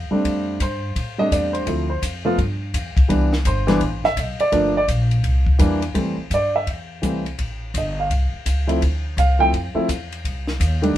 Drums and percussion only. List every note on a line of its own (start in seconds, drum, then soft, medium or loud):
0.25 kick soft
0.25 ride medium
0.60 kick soft
0.60 hi-hat pedal medium
0.60 ride medium
0.96 kick soft
0.96 ride medium
1.32 kick soft
1.32 hi-hat pedal medium
1.32 ride medium
1.55 ride soft
1.67 kick soft
1.67 ride medium
2.02 kick soft
2.02 hi-hat pedal medium
2.02 ride medium
2.38 kick soft
2.38 ride medium
2.74 kick soft
2.74 hi-hat pedal medium
2.74 ride medium
2.97 kick medium
2.97 ride medium
3.10 kick soft
3.10 ride medium
3.33 snare medium
3.45 kick soft
3.45 hi-hat pedal medium
3.45 ride medium
3.68 snare medium
3.68 ride soft
3.81 kick soft
3.81 ride medium
4.04 snare soft
4.17 kick soft
4.17 hi-hat pedal medium
4.17 ride medium
4.40 ride medium
4.52 kick soft
4.52 ride medium
4.88 kick soft
4.88 hi-hat pedal medium
4.88 ride medium
5.11 ride medium
5.24 kick soft
5.24 ride medium
5.47 kick medium
5.59 kick soft
5.59 hi-hat pedal medium
5.59 ride medium
5.82 ride medium
5.95 kick soft
5.95 ride medium
6.31 kick soft
6.31 hi-hat pedal medium
6.31 ride medium
6.67 kick soft
6.67 ride medium
7.03 kick soft
7.03 hi-hat pedal medium
7.03 ride medium
7.26 ride soft
7.39 kick soft
7.39 ride medium
7.74 kick soft
7.74 hi-hat pedal medium
7.74 ride medium
8.10 kick soft
8.10 ride medium
8.46 kick soft
8.46 hi-hat pedal medium
8.46 ride medium
8.69 ride medium
8.82 kick soft
8.82 ride medium
9.17 kick soft
9.17 hi-hat pedal medium
9.17 ride medium
9.53 kick soft
9.53 ride medium
9.89 kick soft
9.89 hi-hat pedal medium
9.89 ride medium
10.12 ride medium
10.25 kick soft
10.25 ride medium
10.47 snare medium
10.60 kick soft
10.60 hi-hat pedal medium
10.60 ride medium
10.83 ride medium